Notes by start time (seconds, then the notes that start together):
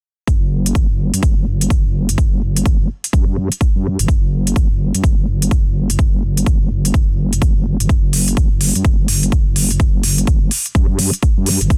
0.28 F#1, kick, closed hi-hat
0.66 closed hi-hat
0.75 F#1, kick, closed hi-hat
0.90 F#1
1.14 F#2, closed hi-hat
1.23 F#1, kick, closed hi-hat
1.47 F#1
1.61 closed hi-hat
1.70 kick, closed hi-hat
1.85 F#1
2.09 closed hi-hat
2.18 F#1, kick, closed hi-hat
2.56 closed hi-hat
2.66 F#1, kick, closed hi-hat
3.04 closed hi-hat
3.13 F#2, kick, closed hi-hat
3.52 closed hi-hat
3.61 kick, closed hi-hat
3.75 F#2
3.99 F#1, closed hi-hat
4.08 F#1, kick, closed hi-hat
4.47 closed hi-hat
4.56 F#1, kick, closed hi-hat
4.71 F#1
4.95 F#2, closed hi-hat
5.04 F#1, kick, closed hi-hat
5.27 F#1
5.42 closed hi-hat
5.51 kick, closed hi-hat
5.66 F#1
5.90 closed hi-hat
5.99 F#1, kick, closed hi-hat
6.37 closed hi-hat
6.46 F#1, kick, closed hi-hat
6.70 F#1
6.85 closed hi-hat
6.94 kick, closed hi-hat
7.09 F#1
7.33 closed hi-hat
7.42 F#1, kick, closed hi-hat
7.80 F#1, closed hi-hat
7.89 F#1, kick, closed hi-hat
8.13 open hi-hat
8.28 closed hi-hat
8.37 F#1, kick, closed hi-hat
8.52 F#1
8.61 open hi-hat
8.75 F#2, closed hi-hat
8.85 F#1, kick, closed hi-hat
9.08 F#1, open hi-hat
9.23 closed hi-hat
9.32 kick, closed hi-hat
9.47 F#1
9.56 open hi-hat
9.71 closed hi-hat
9.80 F#1, kick, closed hi-hat
10.03 open hi-hat
10.18 closed hi-hat
10.27 F#1, kick, closed hi-hat
10.51 open hi-hat
10.66 closed hi-hat
10.75 F#2, kick, closed hi-hat
10.99 open hi-hat
11.13 closed hi-hat
11.23 kick, closed hi-hat
11.37 F#2
11.46 open hi-hat
11.61 F#1, closed hi-hat
11.70 F#1, kick, closed hi-hat